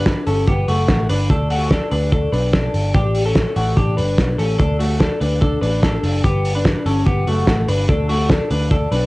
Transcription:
0.00 0.14 G1 medium
0.00 0.25 D4 medium
0.00 0.25 B4 medium
0.06 kick loud
0.06 snare medium
0.06 closed hi-hat medium
0.27 0.45 G1 medium
0.27 0.48 C#4 soft
0.27 0.47 A4 medium
0.27 open hi-hat medium
0.47 0.65 G1 medium
0.47 0.69 B3 medium
0.47 0.68 G4 medium
0.47 kick medium
0.47 closed hi-hat medium
0.68 0.86 F#1 medium
0.68 1.07 A3 soft
0.68 1.07 F#4 medium
0.68 open hi-hat medium
0.88 1.06 A1 medium
0.88 kick loud
0.88 snare loud
0.88 closed hi-hat medium
1.09 1.27 G1 medium
1.09 1.30 D4 medium
1.09 1.30 B4 medium
1.09 open hi-hat medium
1.30 1.79 D2 medium
1.30 1.51 D4 medium
1.30 1.50 A4 medium
1.30 kick loud
1.30 closed hi-hat medium
1.50 1.72 A3 medium
1.50 1.71 F#4 medium
1.50 open hi-hat medium
1.71 1.91 D4 medium
1.71 1.91 A4 medium
1.71 kick medium
1.71 snare medium
1.71 closed hi-hat medium
1.91 2.27 D2 medium
1.91 2.12 D4 soft
1.91 2.12 B4 medium
1.91 open hi-hat medium
2.12 2.32 D4 medium
2.12 2.32 A4 medium
2.12 kick medium
2.12 closed hi-hat medium
2.33 2.68 B1 medium
2.33 2.53 D4 medium
2.33 2.53 B4 medium
2.33 open hi-hat medium
2.53 2.92 D4 medium
2.53 2.92 A4 medium
2.53 kick loud
2.53 snare loud
2.53 closed hi-hat medium
2.74 2.92 G1 medium
2.74 open hi-hat medium
2.94 3.44 A1 loud
2.94 3.24 D4 medium
2.94 3.24 G4 medium
2.94 kick loud
2.94 closed hi-hat medium
3.15 open hi-hat medium
3.26 3.55 C#4 medium
3.26 3.55 A4 medium
3.35 kick loud
3.35 snare loud
3.35 closed hi-hat medium
3.56 3.74 A1 medium
3.56 3.77 A3 soft
3.56 3.76 F#4 medium
3.56 open hi-hat medium
3.77 3.99 A1 medium
3.77 3.97 D4 medium
3.77 3.97 G4 medium
3.77 kick medium
3.77 closed hi-hat medium
3.97 4.15 G1 medium
3.97 4.37 D4 soft
3.97 4.36 B4 medium
3.97 open hi-hat medium
4.18 4.36 B1 medium
4.18 kick loud
4.18 snare medium
4.18 closed hi-hat medium
4.39 4.56 A1 medium
4.39 4.59 C#4 medium
4.39 4.57 A4 medium
4.39 open hi-hat medium
4.59 5.08 D2 medium
4.59 4.80 D4 medium
4.59 4.79 A4 medium
4.59 kick loud
4.59 closed hi-hat medium
4.79 5.01 A3 medium
4.79 4.99 F#4 medium
4.79 open hi-hat medium
5.00 5.20 D4 medium
5.00 5.20 A4 medium
5.00 kick loud
5.00 snare loud
5.00 closed hi-hat medium
5.20 5.56 D2 medium
5.20 5.41 D4 soft
5.20 5.41 B4 medium
5.20 open hi-hat medium
5.41 5.61 D4 medium
5.41 5.61 A4 medium
5.41 kick medium
5.41 closed hi-hat medium
5.61 5.97 A1 medium
5.61 5.82 D4 medium
5.61 5.82 B4 medium
5.61 open hi-hat medium
5.83 6.22 D4 medium
5.83 6.22 A4 medium
5.83 kick loud
5.83 snare medium
5.83 closed hi-hat medium
6.03 6.21 F#1 medium
6.03 open hi-hat medium
6.24 6.73 G1 medium
6.24 6.54 B3 medium
6.24 6.53 G4 medium
6.24 kick loud
6.24 closed hi-hat medium
6.45 open hi-hat medium
6.55 6.85 D4 medium
6.55 6.84 B4 medium
6.65 kick loud
6.65 snare loud
6.65 closed hi-hat medium
6.86 7.03 G1 medium
6.86 7.07 C#4 medium
6.86 7.06 A4 medium
6.86 open hi-hat medium
7.06 7.24 G1 medium
7.06 7.27 B3 medium
7.06 7.27 G4 medium
7.06 kick loud
7.06 closed hi-hat medium
7.27 7.45 F#1 medium
7.27 7.66 A3 medium
7.27 7.66 F#4 medium
7.27 open hi-hat medium
7.47 7.65 A1 medium
7.47 kick loud
7.47 snare loud
7.47 closed hi-hat medium
7.68 7.86 G1 medium
7.68 7.88 D4 medium
7.68 7.88 B4 medium
7.68 open hi-hat medium
7.89 8.38 D2 medium
7.89 8.10 D4 medium
7.89 8.09 A4 medium
7.89 kick loud
7.89 closed hi-hat medium
8.09 8.30 A3 medium
8.09 8.30 F#4 medium
8.09 open hi-hat medium
8.30 8.50 D4 medium
8.30 8.50 A4 medium
8.30 kick loud
8.30 snare loud
8.30 closed hi-hat medium
8.51 8.86 D2 medium
8.51 8.71 D4 soft
8.51 8.71 B4 medium
8.51 open hi-hat medium
8.71 8.91 D4 medium
8.71 8.91 A4 medium
8.71 kick medium
8.71 closed hi-hat medium
8.92 9.06 B1 medium
8.92 9.06 D4 medium
8.92 9.06 B4 medium
8.92 open hi-hat medium

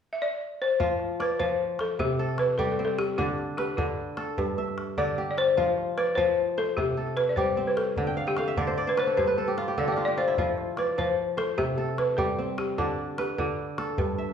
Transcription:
0.13 0.20 E5 medium
0.22 0.62 D5 medium
0.62 1.22 C5 medium
0.80 1.38 F3 medium
0.80 2.31 F4 medium
0.80 calabash thump medium
0.80 calabash click soft
0.99 calabash click soft
1.20 1.41 B4 medium
1.20 2.31 D5 medium
1.20 calabash click medium
1.30 calabash click soft
1.39 2.04 F3 medium
1.39 1.80 C5 medium
1.39 calabash thump medium
1.79 2.00 A4 medium
1.79 calabash click medium
1.99 3.23 C3 medium
1.99 2.40 G4 medium
1.99 calabash thump medium
2.19 3.51 A4 medium
2.28 calabash click soft
2.38 2.58 B4 medium
2.38 calabash click medium
2.58 3.23 G3 medium
2.58 4.00 G4 medium
2.58 2.71 A4 medium
2.58 calabash thump medium
2.72 2.83 A4 medium
2.79 3.64 C4 medium
2.85 2.99 A4 medium
2.99 3.19 G4 medium
2.99 calabash click medium
3.18 3.77 D3 medium
3.18 4.86 D4 medium
3.18 3.59 F4 medium
3.18 calabash thump medium
3.18 calabash click soft
3.38 calabash click soft
3.57 3.78 G4 medium
3.57 4.81 B4 medium
3.57 calabash click medium
3.68 calabash click soft
3.77 4.43 D3 medium
3.77 4.33 F4 medium
3.77 calabash thump medium
4.17 5.49 A4 medium
4.17 calabash click medium
4.38 5.63 G2 medium
4.38 calabash thump medium
4.58 5.63 E5 medium
4.68 calabash click soft
4.78 calabash click medium
4.97 5.63 D3 medium
4.97 5.97 D5 medium
4.97 5.29 D5 medium
4.97 calabash thump medium
5.18 6.59 G4 medium
5.31 5.38 D5 medium
5.38 6.00 C5 loud
5.38 calabash click soft
5.57 6.16 F3 medium
5.57 7.09 F4 medium
5.57 calabash thump medium
5.57 calabash click soft
5.78 calabash click soft
5.98 6.16 B4 medium
5.98 7.08 D5 medium
5.98 calabash click medium
6.08 calabash click soft
6.15 6.82 F3 medium
6.15 6.54 C5 loud
6.15 calabash thump medium
6.58 6.76 A4 medium
6.58 7.76 C5 medium
6.77 8.02 C3 medium
6.77 7.18 G4 medium
6.77 calabash thump medium
6.97 8.29 A4 medium
7.08 calabash click soft
7.17 7.30 B4 medium
7.17 calabash click medium
7.29 7.37 D5 medium
7.36 8.02 G3 medium
7.36 8.79 G4 medium
7.36 7.68 C5 medium
7.36 calabash thump medium
7.57 9.03 C4 medium
7.67 7.77 B4 medium
7.77 8.29 A4 medium
7.77 calabash click medium
7.96 8.56 D3 medium
7.96 calabash thump medium
8.07 8.26 G5 medium
8.17 8.37 F5 medium
8.27 8.37 G4 medium
8.27 9.20 G5 medium
8.37 8.90 A4 medium
8.37 9.37 F5 medium
8.37 calabash click medium
8.48 9.51 E5 medium
8.57 9.22 D3 medium
8.57 8.77 D5 medium
8.57 calabash thump medium
8.67 8.87 C5 medium
8.67 calabash click soft
8.78 9.88 D5 medium
8.78 calabash click soft
8.87 8.98 B4 medium
8.87 9.17 C5 medium
8.97 9.23 B4 medium
8.97 9.19 C5 medium
8.97 calabash click medium
9.07 9.37 A4 medium
9.17 10.42 G2 medium
9.17 9.80 B4 medium
9.17 10.36 C5 medium
9.17 calabash thump medium
9.17 calabash click soft
9.27 10.50 B4 medium
9.38 9.77 A4 medium
9.38 calabash click soft
9.48 9.67 G4 medium
9.57 9.97 F4 medium
9.57 calabash click medium
9.67 9.87 G4 medium
9.67 calabash click soft
9.77 10.42 D3 medium
9.77 11.10 A4 medium
9.77 9.91 D5 medium
9.77 calabash thump soft
9.88 10.07 G4 medium
9.92 10.04 D5 medium
9.97 10.17 F4 medium
9.97 calabash click soft
10.05 11.49 G4 medium
10.05 10.18 D5 loud
10.18 10.38 F4 medium
10.18 10.80 C5 medium
10.18 calabash click soft
10.28 11.04 E4 medium
10.37 10.97 F3 medium
10.37 11.90 F4 medium
10.37 calabash thump medium
10.37 calabash click soft
10.58 calabash click soft
10.77 10.87 B4 medium
10.77 11.89 D5 medium
10.77 calabash click medium
10.88 calabash click soft
10.98 11.63 F3 medium
10.98 11.39 C5 medium
10.98 calabash thump medium
11.37 11.56 A4 medium
11.37 12.56 C5 medium
11.37 calabash click medium
11.58 12.83 C3 medium
11.58 11.99 G4 medium
11.58 calabash thump medium
11.78 13.09 A4 medium
11.88 calabash click soft
11.98 12.17 B4 medium
11.98 calabash click medium
12.17 12.83 G3 medium
12.17 13.59 G4 medium
12.17 12.59 A4 medium
12.17 calabash thump medium
12.39 13.24 C4 medium
12.58 12.79 G4 medium
12.58 calabash click medium
12.78 13.37 D3 medium
12.78 14.33 D4 medium
12.78 13.15 F4 medium
12.78 calabash thump medium
12.78 calabash click soft
12.98 calabash click soft
13.18 13.37 G4 medium
13.18 14.33 B4 medium
13.18 calabash click medium
13.28 calabash click soft
13.38 14.03 D3 medium
13.38 13.95 F4 medium
13.38 calabash thump medium
13.78 14.33 A4 medium
13.78 calabash click medium
13.98 14.33 G2 medium
13.98 calabash thump medium
14.18 14.33 E5 medium
14.29 calabash click soft

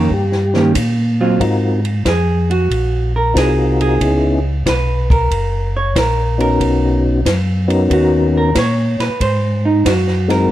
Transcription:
0.00 0.12 A#4 medium
0.10 0.73 G2 medium
0.10 0.73 G4 medium
0.10 kick soft
0.32 snare soft
0.54 0.73 D#3 medium
0.54 0.74 A#3 medium
0.54 0.74 C#4 medium
0.54 0.74 G4 medium
0.54 snare soft
0.75 1.38 A#2 medium
0.75 kick soft
0.75 hi-hat pedal medium
0.75 ride medium
1.21 1.39 F#3 medium
1.21 1.39 C4 medium
1.21 1.39 F4 medium
1.40 2.03 G#2 medium
1.40 1.80 C4 soft
1.40 1.80 D#4 soft
1.40 1.80 F4 soft
1.40 1.80 F#4 soft
1.40 1.80 A#4 medium
1.40 kick soft
1.40 ride medium
1.85 ride soft
2.05 2.68 F2 medium
2.05 2.50 G#4 medium
2.05 kick soft
2.05 snare medium
2.05 hi-hat pedal soft
2.05 ride medium
2.51 3.11 F#4 medium
2.51 ride soft
2.71 3.33 A#1 medium
2.71 kick soft
2.71 ride soft
3.16 3.35 A#4 medium
3.34 3.98 C2 medium
3.34 4.00 C4 medium
3.34 3.99 D#4 medium
3.34 4.00 F4 medium
3.34 4.00 F#4 medium
3.34 3.80 G#4 medium
3.34 4.00 A#4 medium
3.34 kick soft
3.34 snare medium
3.34 hi-hat pedal medium
3.34 ride medium
3.81 4.42 G#4 medium
3.81 ride soft
3.99 4.64 C#2 medium
3.99 4.40 B3 medium
3.99 4.40 C#4 soft
3.99 4.40 D#4 medium
3.99 4.40 E4 soft
3.99 4.40 G#4 medium
3.99 kick soft
3.99 ride medium
4.66 5.29 B1 medium
4.66 5.10 B4 medium
4.66 kick soft
4.66 snare medium
4.66 hi-hat pedal medium
4.66 ride medium
5.10 5.71 A#4 medium
5.10 kick soft
5.10 ride soft
5.31 5.94 F#1 medium
5.31 kick soft
5.31 ride medium
5.77 5.96 C#5 loud
5.96 6.59 A#1 medium
5.96 6.40 A#4 medium
5.96 kick soft
5.96 snare medium
5.96 hi-hat pedal soft
5.96 ride medium
6.38 7.20 B3 medium
6.38 7.21 C#4 medium
6.38 7.21 D#4 medium
6.38 7.21 F#4 medium
6.38 7.01 A#4 medium
6.38 ride soft
6.60 7.24 B1 medium
6.60 kick soft
6.60 ride medium
7.25 7.89 F#2 medium
7.25 kick soft
7.25 snare medium
7.25 hi-hat pedal medium
7.25 ride medium
7.68 8.50 B3 medium
7.68 8.50 C#4 medium
7.68 8.50 D#4 medium
7.68 8.50 F#4 medium
7.68 8.51 A#4 medium
7.68 ride soft
7.90 8.54 D#2 medium
7.90 8.35 F#4 medium
7.90 kick soft
7.90 ride medium
8.37 8.56 A#4 medium
8.55 8.97 A#2 medium
8.55 9.00 C#5 medium
8.55 kick soft
8.55 snare medium
8.55 hi-hat pedal medium
8.55 ride medium
8.99 9.10 A#2 soft
8.99 9.20 B4 medium
8.99 snare soft
8.99 ride soft
9.20 9.84 G#2 medium
9.20 9.64 C5 medium
9.20 kick soft
9.20 ride medium
9.65 9.85 D#4 medium
9.85 10.48 F#2 medium
9.85 10.29 F#4 medium
9.85 kick soft
9.85 snare medium
9.85 hi-hat pedal medium
9.85 ride medium
10.07 snare soft
10.28 10.52 G#3 medium
10.28 10.52 C4 medium
10.28 10.52 D#4 medium
10.28 10.52 F#4 medium
10.28 10.52 A#4 medium
10.28 10.50 A#4 medium
10.28 snare soft
10.28 ride soft

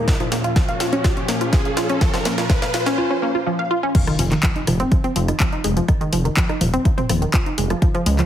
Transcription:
0.00 2.94 A#2 medium
0.00 riser medium
0.08 0.15 F3 medium
0.08 2.95 F3 medium
0.08 2.95 C#4 medium
0.08 kick loud
0.08 snare medium
0.08 closed hi-hat soft
0.20 0.24 F3 loud
0.20 closed hi-hat soft
0.32 0.39 A#3 medium
0.32 snare medium
0.32 open hi-hat loud
0.32 mid tom medium
0.44 0.48 F4 medium
0.44 closed hi-hat soft
0.56 0.67 F3 medium
0.56 kick loud
0.56 snare medium
0.56 closed hi-hat soft
0.69 0.73 F5 medium
0.69 closed hi-hat soft
0.69 mid tom medium
0.80 0.85 F4 medium
0.80 snare medium
0.80 open hi-hat medium
0.93 1.03 C#4 loud
0.93 closed hi-hat soft
1.04 1.12 F4 medium
1.04 kick loud
1.04 snare medium
1.04 closed hi-hat soft
1.04 mid tom loud
1.17 1.21 C#4 medium
1.17 closed hi-hat soft
1.28 1.36 A#3 medium
1.28 snare medium
1.28 open hi-hat loud
1.41 1.45 F4 medium
1.41 closed hi-hat soft
1.41 mid tom loud
1.53 1.63 F3 medium
1.53 kick loud
1.53 snare medium
1.53 closed hi-hat soft
1.65 1.69 F5 medium
1.65 closed hi-hat soft
1.77 1.81 F4 loud
1.77 snare medium
1.77 open hi-hat medium
1.77 mid tom medium
1.89 1.99 C#4 loud
1.89 closed hi-hat soft
2.01 2.08 F3 medium
2.01 kick loud
2.01 snare medium
2.01 closed hi-hat soft
2.14 2.18 F3 loud
2.14 snare medium
2.14 closed hi-hat soft
2.14 mid tom medium
2.25 2.33 A#3 medium
2.25 snare loud
2.25 open hi-hat loud
2.38 2.42 F4 medium
2.38 snare medium
2.38 closed hi-hat soft
2.50 2.60 F3 medium
2.50 kick loud
2.50 snare loud
2.50 closed hi-hat soft
2.50 mid tom medium
2.62 2.66 F5 medium
2.62 snare medium
2.62 closed hi-hat soft
2.74 2.78 F4 medium
2.74 snare loud
2.74 open hi-hat medium
2.86 2.96 C#4 loud
2.86 snare medium
2.86 closed hi-hat soft
2.86 mid tom medium
2.98 3.05 F4 medium
3.11 3.15 C#4 medium
3.22 3.29 A#3 medium
3.35 3.39 F4 medium
3.47 3.57 F3 medium
3.59 3.63 F5 medium
3.71 3.75 F4 loud
3.83 3.93 C#4 loud
3.95 4.02 D#3 medium
3.95 kick loud
3.95 closed hi-hat soft
3.95 crash loud
3.95 impact medium
4.07 4.14 D#3 loud
4.07 cross-stick soft
4.07 closed hi-hat soft
4.19 4.35 F1 loud
4.19 4.23 F3 medium
4.19 open hi-hat loud
4.32 4.38 D#3 medium
4.32 clap soft
4.32 closed hi-hat soft
4.43 4.54 F3 medium
4.43 kick loud
4.43 clap loud
4.43 closed hi-hat soft
4.56 4.62 D#4 medium
4.56 closed hi-hat soft
4.67 4.83 F1 loud
4.67 4.72 F3 medium
4.67 cross-stick medium
4.67 open hi-hat medium
4.67 mid tom medium
4.80 4.90 C4 loud
4.80 closed hi-hat soft
4.92 4.99 F3 medium
4.92 kick loud
4.92 closed hi-hat soft
5.04 5.11 C4 loud
5.04 closed hi-hat soft
5.16 5.31 F1 medium
5.16 5.20 F3 medium
5.16 open hi-hat loud
5.28 5.35 D#3 medium
5.28 cross-stick medium
5.28 closed hi-hat soft
5.40 5.51 F3 medium
5.40 kick loud
5.40 clap loud
5.40 closed hi-hat soft
5.53 5.59 D#4 medium
5.53 closed hi-hat soft
5.64 5.80 F1 medium
5.64 5.71 G#3 medium
5.64 open hi-hat medium
5.77 5.83 F3 medium
5.77 closed hi-hat soft
5.88 5.95 D#3 medium
5.88 kick loud
5.88 cross-stick medium
5.88 closed hi-hat soft
6.01 6.07 D#3 loud
6.01 closed hi-hat soft
6.13 6.28 F1 medium
6.13 6.17 F3 medium
6.13 open hi-hat loud
6.25 6.32 D#3 medium
6.25 closed hi-hat soft
6.37 6.47 F3 medium
6.37 kick loud
6.37 clap loud
6.37 closed hi-hat soft
6.49 6.56 D#4 medium
6.49 cross-stick medium
6.49 closed hi-hat soft
6.61 6.77 D#1 medium
6.61 6.65 F3 medium
6.61 open hi-hat loud
6.61 mid tom medium
6.73 6.83 C4 loud
6.73 closed hi-hat soft
6.85 6.92 F3 medium
6.85 kick loud
6.85 closed hi-hat soft
6.98 7.04 C4 loud
6.98 closed hi-hat soft
6.98 mid tom medium
7.09 7.25 D#1 medium
7.09 7.14 F3 medium
7.09 cross-stick medium
7.09 open hi-hat loud
7.22 7.28 D#3 medium
7.22 closed hi-hat soft
7.33 7.44 F3 medium
7.33 kick loud
7.33 clap loud
7.33 closed hi-hat soft
7.46 7.53 D#4 medium
7.46 closed hi-hat soft
7.58 7.73 F1 medium
7.58 7.65 G#3 medium
7.58 open hi-hat loud
7.70 7.77 F3 medium
7.70 cross-stick medium
7.70 closed hi-hat soft
7.82 7.89 F3 medium
7.82 kick loud
7.82 closed hi-hat soft
7.95 8.01 F3 loud
7.95 closed hi-hat soft
8.06 8.22 C#2 loud
8.06 8.10 G#3 medium
8.06 open hi-hat loud
8.19 8.25 F3 medium
8.19 clap soft
8.19 closed hi-hat soft

